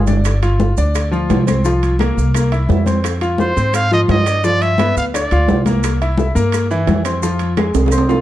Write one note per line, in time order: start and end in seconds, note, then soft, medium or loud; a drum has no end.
0.00 0.72 G1 medium
0.07 0.36 D4 medium
0.07 0.36 D5 medium
0.07 high bongo soft
0.07 high conga medium
0.07 high timbale medium
0.07 maracas medium
0.25 high bongo medium
0.25 high timbale medium
0.25 claves medium
0.25 maracas medium
0.42 0.71 F4 medium
0.42 0.71 F5 medium
0.42 high conga soft
0.42 high timbale medium
0.42 maracas soft
0.60 high bongo medium
0.60 high conga medium
0.60 low timbale soft
0.60 maracas soft
0.77 1.26 D2 medium
0.77 1.06 D4 medium
0.77 1.07 D5 medium
0.77 high bongo soft
0.77 high conga soft
0.77 maracas medium
0.95 high bongo medium
0.95 high conga soft
0.95 high timbale medium
0.95 claves medium
0.95 maracas medium
1.11 1.41 F3 medium
1.11 1.41 F4 medium
1.11 high bongo soft
1.11 high conga soft
1.11 maracas soft
1.30 2.11 C2 medium
1.30 high bongo soft
1.30 low bongo medium
1.30 high conga medium
1.30 high timbale medium
1.30 low timbale medium
1.30 maracas soft
1.47 1.62 C4 medium
1.47 1.62 C5 medium
1.47 high bongo soft
1.47 high conga medium
1.47 high timbale medium
1.47 claves medium
1.47 maracas medium
1.64 1.93 F3 medium
1.64 1.94 F4 medium
1.64 high bongo medium
1.64 high conga soft
1.64 maracas medium
1.83 high conga soft
1.83 high timbale medium
1.83 maracas soft
1.99 2.28 A#3 medium
1.99 2.29 A#4 medium
1.99 high bongo medium
1.99 high conga medium
1.99 high timbale medium
1.99 low timbale medium
1.99 claves medium
1.99 maracas soft
2.17 2.66 C2 medium
2.17 high bongo soft
2.17 high conga soft
2.17 maracas medium
2.34 2.49 A#3 medium
2.34 2.49 A#4 medium
2.34 high bongo medium
2.34 high conga soft
2.34 high timbale medium
2.34 claves medium
2.34 maracas loud
2.52 2.81 E4 medium
2.52 2.81 E5 medium
2.52 high bongo soft
2.52 high conga soft
2.52 high timbale medium
2.52 maracas soft
2.69 3.51 F2 medium
2.69 high bongo soft
2.69 low bongo medium
2.69 high conga medium
2.69 low timbale medium
2.69 maracas soft
2.86 3.15 C4 medium
2.86 3.15 C5 medium
2.86 high bongo soft
2.86 high conga medium
2.86 high timbale medium
2.86 maracas medium
3.04 high bongo medium
3.04 high timbale medium
3.04 claves medium
3.04 maracas medium
3.21 3.50 F4 medium
3.21 3.50 F5 medium
3.21 high conga soft
3.21 high timbale medium
3.21 maracas soft
3.38 3.76 C5 loud
3.38 high bongo medium
3.38 high conga medium
3.38 low timbale medium
3.38 maracas soft
3.56 4.05 G#2 medium
3.56 3.85 C4 medium
3.56 3.86 C5 medium
3.56 high bongo soft
3.56 high conga soft
3.56 maracas medium
3.74 3.92 F5 loud
3.74 high bongo medium
3.74 high conga soft
3.74 high timbale medium
3.74 claves medium
3.74 maracas medium
3.91 4.20 F3 medium
3.91 4.20 F4 medium
3.91 4.01 D#5 medium
3.91 high bongo soft
3.91 high conga soft
3.91 maracas soft
4.08 4.90 G2 medium
4.08 4.46 D#5 loud
4.08 high bongo soft
4.08 low bongo medium
4.08 high conga medium
4.08 high timbale medium
4.08 low timbale medium
4.08 maracas soft
4.26 4.41 D4 medium
4.26 4.41 D5 medium
4.26 high bongo soft
4.26 high timbale medium
4.26 claves medium
4.26 maracas medium
4.43 4.73 F3 medium
4.43 4.73 F4 medium
4.43 4.63 D5 loud
4.43 high bongo medium
4.43 high conga soft
4.43 maracas medium
4.61 4.97 E5 loud
4.61 high conga soft
4.61 high timbale medium
4.61 maracas soft
4.78 5.08 B3 medium
4.78 5.08 B4 medium
4.78 high bongo medium
4.78 high conga medium
4.78 high timbale medium
4.78 low timbale medium
4.78 claves medium
4.78 maracas soft
4.96 5.29 D2 medium
4.96 5.05 F5 medium
4.96 high bongo soft
4.96 high conga soft
4.96 maracas medium
5.14 5.28 D4 medium
5.14 5.28 D5 medium
5.14 5.63 D5 medium
5.14 high bongo medium
5.14 high conga soft
5.14 high timbale medium
5.14 claves medium
5.14 maracas loud
5.31 5.48 D2 medium
5.31 5.60 F4 medium
5.31 5.61 F5 medium
5.31 high bongo soft
5.31 high conga soft
5.31 high timbale medium
5.31 maracas soft
5.48 6.30 C2 medium
5.48 high bongo soft
5.48 low bongo medium
5.48 high conga medium
5.48 low timbale medium
5.48 maracas soft
5.66 5.95 A#3 medium
5.66 5.95 A#4 medium
5.66 high bongo soft
5.66 high conga medium
5.66 high timbale medium
5.66 maracas medium
5.84 high bongo medium
5.84 high timbale medium
5.84 claves medium
5.84 maracas medium
6.01 6.30 E4 medium
6.01 6.30 E5 medium
6.01 high conga soft
6.01 high timbale medium
6.01 maracas soft
6.17 high bongo medium
6.17 high conga medium
6.17 low timbale medium
6.17 maracas soft
6.35 6.84 G2 medium
6.35 6.64 A#3 medium
6.35 6.64 A#4 medium
6.35 high bongo soft
6.35 high conga soft
6.35 maracas medium
6.52 high bongo medium
6.52 high conga soft
6.52 high timbale medium
6.52 claves medium
6.52 maracas medium
6.71 6.99 E3 medium
6.71 7.00 E4 medium
6.71 high bongo soft
6.71 high conga soft
6.71 maracas soft
6.87 7.69 F2 medium
6.87 high bongo soft
6.87 low bongo medium
6.87 high conga medium
6.87 high timbale medium
6.87 low timbale medium
6.87 maracas soft
7.05 7.20 C4 medium
7.05 7.20 C5 medium
7.05 high bongo soft
7.05 high timbale medium
7.05 claves medium
7.05 maracas medium
7.22 7.51 F3 medium
7.22 7.52 F4 medium
7.22 high bongo medium
7.22 high conga soft
7.22 maracas medium
7.39 high conga soft
7.39 high timbale medium
7.39 maracas soft
7.57 7.86 G#3 medium
7.57 7.86 G#4 medium
7.57 high bongo medium
7.57 high conga medium
7.57 high timbale medium
7.57 low timbale medium
7.57 claves medium
7.57 maracas soft
7.74 8.21 C2 medium
7.74 high bongo medium
7.74 high timbale medium
7.74 maracas medium
7.86 high bongo medium
7.86 high timbale medium
7.92 8.07 C4 medium
7.92 8.07 C5 medium
7.92 high conga soft
7.92 claves medium
7.92 maracas medium
7.98 high timbale loud
8.09 8.21 F4 medium
8.09 8.21 F5 medium
8.09 low bongo medium
8.09 high conga soft
8.09 high timbale medium
8.09 maracas soft